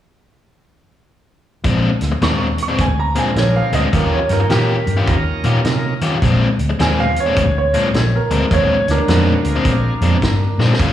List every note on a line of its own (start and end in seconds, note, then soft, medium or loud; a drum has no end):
1.64 1.89 A#1 medium
1.64 1.88 A#2 medium
1.64 1.89 G#3 medium
1.64 1.89 C4 medium
1.64 1.89 D4 loud
1.64 kick loud
1.64 closed hi-hat medium
2.01 2.15 D2 medium
2.01 snare soft
2.01 closed hi-hat medium
2.12 muted overdriven electric guitar stroke soft
2.21 2.60 D#2 medium
2.21 2.46 A#2 medium
2.21 2.46 G#3 medium
2.21 2.46 C4 medium
2.21 2.46 D4 medium
2.21 2.41 C#6 medium
2.21 snare loud
2.21 closed hi-hat medium
2.58 closed hi-hat medium
2.63 2.80 C#6 medium
2.68 2.85 A#2 medium
2.68 2.85 G#3 medium
2.68 2.85 C4 medium
2.68 2.85 D4 medium
2.78 3.17 D2 loud
2.78 2.99 G#5 medium
2.78 kick loud
2.78 closed hi-hat medium
2.99 3.17 A#5 medium
3.15 3.29 A#2 medium
3.15 3.29 G#3 medium
3.15 3.89 A#3 medium
3.15 3.89 C4 medium
3.15 3.29 C4 medium
3.15 3.89 D4 medium
3.15 3.30 D4 medium
3.15 3.89 F4 medium
3.15 3.89 G#4 medium
3.15 3.37 G#5 medium
3.15 closed hi-hat medium
3.36 3.60 A#1 medium
3.36 3.56 C#5 medium
3.36 snare medium
3.36 closed hi-hat medium
3.56 3.74 F5 medium
3.72 3.86 D2 medium
3.72 3.86 A#2 medium
3.72 3.87 G#3 medium
3.72 3.87 C4 medium
3.72 3.87 D4 medium
3.72 3.93 D#5 medium
3.72 closed hi-hat medium
3.93 4.18 D#2 medium
3.93 4.17 D#3 medium
3.93 4.17 C#4 medium
3.93 4.17 F4 loud
3.93 4.17 G4 medium
3.93 4.13 A#4 medium
3.93 kick loud
3.93 closed hi-hat medium
4.13 4.31 C#5 medium
4.29 4.43 G2 medium
4.29 4.48 A#3 medium
4.29 4.48 C#4 medium
4.29 4.49 D#4 medium
4.29 4.49 F4 medium
4.29 4.49 G4 medium
4.29 4.50 A#4 medium
4.29 snare soft
4.29 closed hi-hat medium
4.40 muted overdriven electric guitar stroke soft
4.50 4.75 A#2 medium
4.50 4.74 D#3 medium
4.50 4.74 C#4 medium
4.50 4.75 F4 medium
4.50 5.04 G4 medium
4.50 4.75 G4 medium
4.50 5.07 A#4 medium
4.50 snare loud
4.50 closed hi-hat medium
4.87 5.01 G2 loud
4.87 closed hi-hat medium
4.97 5.14 D#3 medium
4.97 5.14 C#4 medium
4.97 5.13 F4 medium
4.97 5.13 G4 loud
5.07 5.32 D#2 medium
5.07 5.94 A#3 medium
5.07 5.94 C#4 medium
5.07 5.94 D#4 medium
5.07 5.94 F4 medium
5.07 5.94 A#4 medium
5.07 kick loud
5.07 closed hi-hat medium
5.44 5.58 A#2 medium
5.44 5.58 D#3 medium
5.44 5.58 C#4 medium
5.44 5.58 F4 medium
5.44 5.59 G4 loud
5.44 closed hi-hat medium
5.64 5.89 C3 medium
5.64 snare loud
5.64 closed hi-hat medium
6.01 6.15 D#3 medium
6.01 6.15 C#4 medium
6.01 6.16 F4 loud
6.01 6.16 G4 loud
6.01 closed hi-hat medium
6.22 6.46 A#1 medium
6.22 6.46 A#2 medium
6.22 6.46 G#3 medium
6.22 6.47 C4 loud
6.22 6.47 D4 medium
6.22 kick medium
6.22 closed hi-hat medium
6.58 6.72 D2 medium
6.58 closed hi-hat medium
6.69 muted overdriven electric guitar stroke medium
6.79 7.17 D#2 loud
6.79 7.03 A#2 medium
6.79 7.03 G#3 medium
6.79 7.12 A#3 medium
6.79 7.12 C4 medium
6.79 7.03 C4 medium
6.79 7.12 D4 medium
6.79 7.03 D4 medium
6.79 7.12 F4 medium
6.79 7.12 G#4 medium
6.79 6.98 G#5 medium
6.79 snare loud
6.79 closed hi-hat medium
7.00 7.18 F5 loud
7.16 7.56 C#5 medium
7.16 closed hi-hat medium
7.26 7.43 A#2 medium
7.26 7.42 G#3 medium
7.26 7.42 C4 medium
7.26 7.42 D4 medium
7.36 7.74 D2 medium
7.36 kick loud
7.36 closed hi-hat medium
7.58 8.12 C#5 medium
7.73 7.87 A#2 medium
7.73 7.87 G#3 medium
7.73 7.92 A#3 medium
7.73 7.92 C4 medium
7.73 7.87 C4 medium
7.73 7.92 D4 medium
7.73 7.87 D4 medium
7.73 7.92 F4 medium
7.73 7.92 G#4 medium
7.73 closed hi-hat medium
7.94 8.18 A#1 medium
7.94 snare loud
7.94 closed hi-hat medium
8.16 8.51 A#4 medium
8.30 8.44 D2 medium
8.30 8.44 A#2 medium
8.30 8.44 G#3 medium
8.30 8.44 C4 medium
8.30 8.44 D4 medium
8.30 closed hi-hat medium
8.51 8.75 D#2 medium
8.51 8.75 A#2 loud
8.51 8.75 G#3 medium
8.51 8.75 C4 loud
8.51 8.75 D4 loud
8.51 8.89 C#5 medium
8.51 kick loud
8.51 closed hi-hat medium
8.87 9.01 D2 medium
8.87 snare soft
8.87 closed hi-hat medium
8.91 10.57 D4 medium
8.91 10.58 A#4 loud
8.98 muted overdriven electric guitar stroke medium
9.08 9.32 F2 loud
9.08 9.32 A#2 medium
9.08 9.32 G#3 medium
9.08 9.41 B3 medium
9.08 9.32 C4 medium
9.08 9.41 C#4 medium
9.08 9.33 D4 medium
9.08 9.41 D#4 medium
9.08 9.41 F#4 medium
9.08 9.41 A4 medium
9.08 snare loud
9.08 closed hi-hat medium
9.43 9.57 D2 medium
9.43 9.94 A#3 medium
9.43 9.94 C4 medium
9.43 9.94 D4 medium
9.43 9.94 F4 medium
9.43 9.94 G#4 medium
9.43 closed hi-hat medium
9.56 9.72 A#2 medium
9.56 9.71 G#3 medium
9.56 9.71 C4 medium
9.56 9.71 D4 medium
9.65 9.89 A#1 medium
9.65 kick loud
9.65 closed hi-hat medium
10.01 10.15 F2 medium
10.01 10.15 A#2 medium
10.01 10.16 G#3 medium
10.01 10.16 C4 medium
10.01 10.16 D4 loud
10.01 closed hi-hat medium
10.22 10.46 G2 medium
10.22 kick medium
10.22 snare loud
10.22 closed hi-hat medium
10.58 10.72 A#2 medium
10.58 10.73 G#3 medium
10.58 10.73 C4 medium
10.58 10.73 D4 medium
10.58 snare medium
10.74 snare medium
10.80 10.93 D#2 medium
10.80 10.93 D#3 medium
10.80 10.93 G3 medium
10.80 10.93 C#4 loud
10.80 10.93 F4 loud
10.80 kick loud
10.80 closed hi-hat medium
10.80 crash medium